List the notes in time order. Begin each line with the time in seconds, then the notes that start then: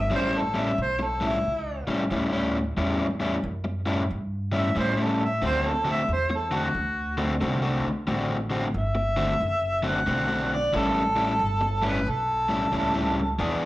Already playing: E5
0.10 A1 A2 G3 C#4 E4
0.15 C5
0.38 A4
0.54 A2 G3 C#4 E4
0.60 E5
0.78 B1 C5
0.99 muted overdriven electric guitar stroke
1.04 A4
1.21 A2 G3 C#4 E4
1.27 E4
1.45 C#2
1.87 A2 G3 C#4 E4, muted upright bass stroke
2.11 D2 A2 G3 C#4 E4
2.32 A2 G3 C#4 E4
2.77 E2 A2 G3 C#4 E4
3.20 A2 G3 C#4 E4
3.44 F#2
3.64 muted overdriven electric guitar stroke
3.86 A2 G3 C#4 E4
4.10 G2
4.52 A2 G3 C#4 E4
4.57 E5
4.75 A2 G3 C#4 E4 C5
4.97 A2 G3 C#4 E4
5.03 A4
5.24 E5
5.42 D2 D3 A3 C4 F#4
5.46 C5
5.68 A4
5.85 D3 A3 C4 F#4
5.90 E5
6.09 E2
6.13 C5
6.30 muted overdriven electric guitar stroke
6.35 A4
6.51 D3 A3 C4 F#4
6.57 F#4
6.74 D2
7.17 D3 A3 C4 F#4
7.41 C2 D3 A3 C4 F#4
7.62 D3 A3 C4 F#4
7.84 muted upright bass stroke
8.07 A1 D3 A3 C4 F#4
8.50 D3 A3 C4 F#4
8.74 G1
8.78 E5
8.95 muted overdriven electric guitar stroke
9.17 D3 A3 C4 F#4
9.40 F#1
9.83 D3 A3 C4 F#4
9.87 F#5
10.07 B1 D3 A3 C4 F#4
10.28 D3 A3 C4 F#4
10.54 D5
10.73 A1 A2 G3 C#4 E4 A4
11.16 A2 G3 C#4 E4
11.39 G1
11.61 muted overdriven electric guitar stroke
11.82 A2 G3 C#4 E4 B4
12.06 B1 A4
12.49 A2 G3 C#4 E4
12.72 C#2 A2 G3 C#4 E4
12.94 A2 G3 C#4 E4
13.39 E2 E3 B3 D4 G#4